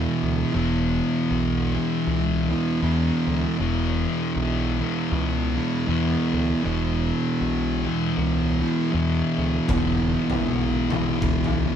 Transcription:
0.00 0.54 E2 medium
0.00 0.53 B2 medium
0.00 0.56 E3 medium
0.23 0.42 D2 medium
0.54 1.00 E1 loud
0.54 1.77 E2 medium
0.54 1.73 B2 medium
0.54 1.74 E3 loud
1.31 1.76 B1 medium
1.75 2.81 E2 medium
1.75 2.82 B2 medium
1.75 2.84 E3 medium
2.07 2.53 C#2 medium
2.49 2.81 E2 medium
2.49 2.81 B2 medium
2.49 2.83 E3 medium
2.82 3.59 E2 medium
2.82 3.09 E2 medium
2.82 3.57 B2 medium
2.82 3.61 E3 medium
3.27 3.46 D2 medium
3.59 4.05 E1 medium
3.59 4.83 E2 medium
3.59 4.78 B2 loud
3.59 4.80 E3 loud
4.36 4.82 B1 medium
4.80 5.88 E2 medium
4.80 5.87 B2 medium
4.80 5.90 E3 medium
5.12 5.58 C#2 medium
5.54 5.86 E2 medium
5.54 5.86 B2 medium
5.54 5.89 E3 medium
5.88 6.63 E2 medium
5.88 6.15 E2 medium
5.88 6.63 B2 medium
5.88 6.66 E3 medium
6.33 6.52 D2 medium
6.63 7.11 E1 loud
6.63 7.86 E2 medium
6.63 7.83 B2 medium
6.63 7.84 E3 loud
7.41 7.87 B1 medium
7.84 8.92 E2 medium
7.84 8.92 B2 medium
7.84 8.95 E3 medium
8.17 8.63 C#2 medium
8.60 8.91 E2 medium
8.60 8.91 B2 medium
8.60 8.94 E3 medium
8.92 9.69 E2 medium
8.92 9.21 E2 medium
8.92 9.68 B2 medium
8.92 9.71 E3 loud
9.38 9.57 D2 medium
9.68 10.15 E1 medium
9.68 10.92 E2 loud
9.68 10.89 B2 loud
9.68 10.90 E3 loud
9.68 kick loud
9.68 floor tom medium
10.30 floor tom loud
10.47 10.93 B1 medium
10.90 11.76 E2 medium
10.90 11.76 B2 medium
10.90 11.76 E3 medium
10.90 floor tom medium
11.22 11.68 C#2 medium
11.22 kick loud
11.44 floor tom medium
11.67 11.76 E2 medium
11.67 11.76 B2 medium
11.67 11.76 E3 medium

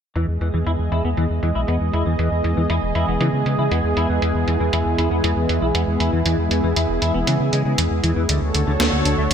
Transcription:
0.15 0.26 E2 loud
0.15 8.25 E3 medium
0.15 0.25 E3 medium
0.15 8.25 G#3 medium
0.15 8.25 B3 medium
0.15 8.25 G#4 medium
0.15 4.18 D#5 medium
0.15 closed hi-hat medium
0.28 0.38 E2 medium
0.41 0.51 E2 medium
0.41 0.47 E3 medium
0.41 closed hi-hat medium
0.54 0.64 E2 medium
0.54 0.58 E3 medium
0.66 0.77 E2 loud
0.66 0.70 E4 medium
0.66 closed hi-hat medium
0.79 0.89 E2 medium
0.92 1.02 E2 loud
0.92 1.01 E4 medium
0.92 closed hi-hat medium
1.05 1.15 E2 medium
1.05 1.08 B3 medium
1.17 1.28 E2 loud
1.17 1.24 E3 medium
1.17 closed hi-hat medium
1.30 1.40 E2 medium
1.43 1.53 E2 medium
1.43 1.49 E3 medium
1.43 closed hi-hat medium
1.55 1.66 B1 medium
1.55 1.59 E4 medium
1.68 1.78 E2 loud
1.68 1.74 B3 medium
1.68 closed hi-hat medium
1.81 1.91 E2 medium
1.93 2.04 E2 medium
1.93 2.03 E4 medium
1.93 closed hi-hat medium
2.06 2.16 E2 medium
2.06 2.13 E3 medium
2.19 2.29 E2 loud
2.19 2.28 E3 medium
2.19 closed hi-hat medium
2.32 2.42 E2 medium
2.44 2.55 E2 medium
2.44 2.51 E3 medium
2.44 closed hi-hat medium
2.57 2.67 E2 medium
2.57 2.61 E3 medium
2.70 2.80 E2 loud
2.70 2.74 E4 medium
2.70 closed hi-hat medium
2.83 2.93 E1 medium
2.95 3.05 E2 medium
2.95 3.05 E4 medium
2.95 closed hi-hat medium
3.08 3.18 E1 medium
3.08 3.12 B3 medium
3.21 3.31 C#3 loud
3.21 3.27 E3 medium
3.21 closed hi-hat medium
3.33 3.44 C#3 medium
3.46 3.56 C#3 medium
3.46 3.52 E3 medium
3.46 closed hi-hat medium
3.59 3.69 C#3 medium
3.59 3.63 E4 medium
3.71 3.82 E2 loud
3.71 3.78 B3 medium
3.71 closed hi-hat medium
3.84 3.94 E2 medium
3.97 4.07 E2 medium
3.97 4.06 E4 medium
3.97 closed hi-hat medium
4.10 4.20 E2 medium
4.10 4.16 E3 medium
4.22 4.32 E2 loud
4.22 4.32 E3 medium
4.22 8.25 E4 medium
4.22 closed hi-hat medium
4.35 4.45 E2 medium
4.48 4.58 E2 medium
4.48 4.54 E3 medium
4.48 closed hi-hat medium
4.60 4.71 E2 medium
4.60 4.64 E3 loud
4.73 4.83 E2 medium
4.73 4.77 E4 medium
4.73 closed hi-hat medium
4.86 4.96 E2 medium
4.98 5.09 E2 medium
4.98 5.08 E4 medium
4.98 closed hi-hat medium
5.11 5.21 E2 medium
5.11 5.15 B3 medium
5.24 5.34 E2 loud
5.24 5.30 E3 medium
5.24 closed hi-hat medium
5.37 5.47 E2 medium
5.49 5.60 E2 medium
5.49 5.56 E3 medium
5.49 closed hi-hat medium
5.62 5.72 B1 medium
5.62 5.66 E4 medium
5.75 5.85 E2 loud
5.75 5.81 B3 medium
5.75 closed hi-hat medium
5.88 5.98 E2 medium
6.00 6.10 E2 medium
6.00 6.10 E4 medium
6.00 closed hi-hat medium
6.13 6.23 E2 medium
6.13 6.19 E3 medium
6.26 6.36 E2 loud
6.26 6.35 E3 medium
6.26 closed hi-hat medium
6.38 6.49 E2 medium
6.51 6.61 E2 medium
6.51 6.57 E3 medium
6.51 closed hi-hat medium
6.64 6.74 E2 medium
6.64 6.68 E3 medium
6.76 6.87 E2 loud
6.76 6.80 E4 medium
6.76 closed hi-hat medium
6.89 6.99 E1 medium
7.02 7.12 E2 medium
7.02 7.11 E4 medium
7.02 closed hi-hat medium
7.14 7.25 E1 medium
7.14 7.18 B3 medium
7.27 7.38 C#3 loud
7.27 7.34 E3 medium
7.27 closed hi-hat medium
7.40 7.50 C#3 medium
7.53 7.63 C#3 medium
7.53 7.62 G#3 medium
7.53 closed hi-hat medium
7.65 7.76 C#3 medium
7.65 7.72 G#3 medium
7.78 7.88 E2 loud
7.78 7.82 E3 medium
7.78 closed hi-hat medium
7.91 8.01 E2 medium
8.03 8.14 E2 medium
8.03 8.10 E3 medium
8.03 closed hi-hat medium
8.16 8.27 E2 medium
8.16 8.23 E3 medium
8.29 8.39 D2 loud
8.29 9.34 D3 medium
8.29 8.39 D3 medium
8.29 9.34 A3 medium
8.29 9.34 F#4 medium
8.29 9.34 A4 medium
8.29 9.34 C#5 medium
8.29 closed hi-hat medium
8.42 8.52 D2 medium
8.55 8.65 D2 medium
8.55 8.61 D3 medium
8.55 closed hi-hat medium
8.67 8.78 D2 medium
8.67 8.71 D3 loud
8.80 8.90 D2 medium
8.80 8.84 D4 medium
8.80 snare loud
8.80 closed hi-hat medium
8.93 9.03 D2 medium
9.05 9.16 D2 loud
9.05 9.15 D4 medium
9.05 closed hi-hat medium
9.18 9.28 D2 medium
9.18 9.22 A3 medium

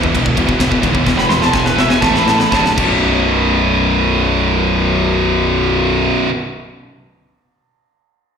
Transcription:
0.00 0.12 E2 loud
0.00 0.14 E2 medium
0.00 0.13 B2 loud
0.00 0.14 B2 loud
0.00 0.13 E3 loud
0.00 kick loud
0.15 0.32 E1 loud
0.15 0.35 E2 medium
0.15 0.35 B2 medium
0.15 0.37 E3 loud
0.15 kick medium
0.15 ride loud
0.26 kick medium
0.37 0.55 E1 medium
0.37 0.47 E2 medium
0.37 0.47 B2 loud
0.37 0.60 E3 loud
0.37 kick medium
0.37 ride medium
0.48 0.58 E2 medium
0.48 0.59 B2 medium
0.48 kick medium
0.60 0.78 E1 medium
0.60 0.70 E2 medium
0.60 0.70 B2 medium
0.60 0.83 E3 loud
0.60 kick medium
0.60 snare loud
0.60 ride loud
0.71 0.81 E2 medium
0.71 0.81 B2 medium
0.71 kick medium
0.82 1.01 D#2 medium
0.82 0.94 E2 medium
0.82 0.93 B2 medium
0.82 1.06 E3 loud
0.82 kick medium
0.82 ride medium
0.95 1.04 E2 medium
0.95 1.05 B2 medium
0.95 kick medium
1.06 1.25 E1 loud
1.06 1.16 E2 medium
1.06 1.16 B2 medium
1.06 1.30 E3 loud
1.06 kick medium
1.06 snare medium
1.17 1.28 E2 medium
1.17 1.28 B2 medium
1.17 1.29 B5 loud
1.17 snare medium
1.29 1.48 E1 loud
1.29 1.41 E2 medium
1.29 1.40 B2 medium
1.29 1.54 E3 loud
1.29 1.41 C6 loud
1.29 snare medium
1.42 1.52 E2 medium
1.42 1.53 B2 medium
1.42 1.53 A5 medium
1.42 snare medium
1.53 1.72 E1 medium
1.53 1.75 E2 medium
1.53 1.76 B2 medium
1.53 1.77 E3 loud
1.53 1.65 G#5 medium
1.53 kick medium
1.53 snare medium
1.65 1.77 B4 medium
1.65 snare medium
1.77 1.96 E1 loud
1.77 1.89 E2 medium
1.77 1.88 B2 medium
1.77 2.01 E3 loud
1.77 1.90 E5 loud
1.77 snare medium
1.89 2.01 E2 medium
1.89 2.02 B2 medium
1.89 2.01 G#5 medium
1.89 snare medium
2.01 2.21 A1 loud
2.01 2.25 A2 medium
2.01 2.26 E3 medium
2.01 2.26 A3 medium
2.01 2.13 A5 medium
2.01 kick medium
2.01 snare medium
2.14 2.26 B5 loud
2.14 snare medium
2.25 2.46 A1 medium
2.25 2.39 A2 medium
2.25 2.39 E3 medium
2.25 2.51 A3 loud
2.25 2.38 A5 loud
2.25 snare loud
2.38 2.52 A2 medium
2.38 2.52 E3 medium
2.38 2.51 B5 loud
2.38 snare medium
2.51 2.72 D1 loud
2.51 2.63 D2 loud
2.51 2.64 A2 loud
2.51 2.64 D3 loud
2.51 2.67 A5 loud
2.51 kick medium
2.51 snare medium
2.65 2.76 D2 medium
2.65 2.78 A2 medium
2.65 snare medium
2.77 6.08 B0 medium
2.77 6.27 B1 loud
2.77 6.29 F#2 loud
2.77 6.31 B2 loud
2.77 kick loud
2.77 crash medium

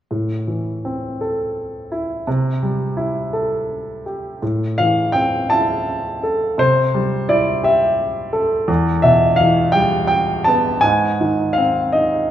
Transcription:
0.11 2.23 A2 soft
0.47 1.87 E3 soft
0.85 2.23 C4 soft
1.21 2.24 A4 soft
1.92 2.26 E4 soft
2.27 4.38 C3 soft
2.63 4.02 G3 soft
2.97 4.37 E4 soft
3.33 4.38 A4 soft
4.06 4.41 G4 soft
4.42 6.54 A2 soft
4.78 6.20 E3 soft
4.78 5.15 F5 medium
5.12 6.54 C4 soft
5.12 5.51 G5 medium
5.50 6.55 E4 soft
5.50 6.61 A5 medium
6.23 6.57 A4 soft
6.58 8.65 C3 soft
6.58 7.25 C5 medium
6.94 8.30 G3 soft
7.29 8.65 E4 soft
7.29 7.61 D5 medium
7.64 8.66 G4 soft
7.64 8.39 E5 medium
8.33 8.67 A4 soft
8.68 10.78 E2 medium
9.02 10.41 B2 medium
9.02 9.39 E5 medium
9.36 9.74 F5 medium
9.40 10.79 E3 soft
9.72 10.79 G3 soft
9.72 10.06 G5 medium
10.07 10.46 G5 medium
10.44 10.82 B3 soft
10.44 10.83 A5 medium
10.81 12.31 G#2 medium
10.81 11.58 G#5 medium
11.21 12.31 D#3 soft
11.53 11.94 F5 medium
11.58 12.31 C4 soft
11.92 12.31 D#4 soft
11.92 12.31 D#5 medium

